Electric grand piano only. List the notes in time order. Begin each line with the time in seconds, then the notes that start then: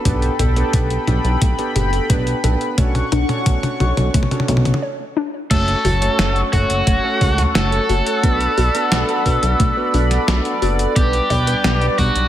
0.05 B3 D4 G4 A4 B4
0.57 B3 D4 G4 A4 B4
1.08 B3 D4 G4 A4 B4
1.59 B3 D4 G4 A4 B4
2.10 B3 D4 G4 A4 B4
2.44 B3 D4 G4 A4 B4
2.78 C#4 D4 F#4 A4 C#5
3.29 C#4 D4 F#4 A4 C#5
3.80 C#4 D4 F#4 A4 C#5
4.32 C#4 D4 F#4 A4 C#5
5.51 A3 C#4 F#4 A4 C#5
6.02 A3 C#4 F#4 A4 C#5
6.53 A3 C#4 F#4 A4 C#5
7.04 A3 C#4 F#4 A4 C#5
7.55 A3 C#4 F#4 A4 C#5
7.89 A3 C#4 F#4 A4 C#5
8.23 B3 D4 F#4 A4 B4
8.75 B3 D4 F#4 A4 B4
9.26 B3 D4 F#4 A4 B4
9.77 B3 D4 F#4 A4 B4
10.28 B3 D4 F#4 A4 B4
10.62 B3 D4 F#4 A4 B4
10.96 G3 B3 D4 G4 B4
11.47 G3 B3 D4 G4 B4
11.98 G3 B3 D4 B4